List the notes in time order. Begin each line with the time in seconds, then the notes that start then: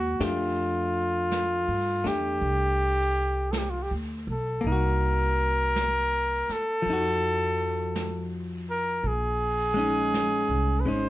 Already playing: D#2 G#3 A#3 E4 F#4
0.19 F2 A3 D4 G4, brush sweep, snare
0.24 F4
1.32 brush sweep, snare, hi-hat pedal
1.68 G2
2.04 E2 A3 D4 G4, snare
2.41 C2, brush sweep
3.51 A4, brush sweep, snare, hi-hat pedal
3.58 G4
3.70 F4
3.82 G4
3.90 D2
4.27 B1
4.32 A4
4.61 C2 A#3, brush sweep
4.67 D#4 A#4
4.72 F#4
5.76 brush sweep, snare, hi-hat pedal
6.48 A4, muted upright bass stroke, snare
6.82 F2 F3, brush sweep
6.90 D#4 F#4
7.96 brush sweep, snare, hi-hat pedal
8.70 A#4
9.04 A#1 G#4, brush sweep
9.74 G#3 C#4
9.79 D#4
10.14 brush sweep, snare, hi-hat pedal
10.49 C2
10.80 B4
10.86 G#1 G#3 C#4 D#4 C5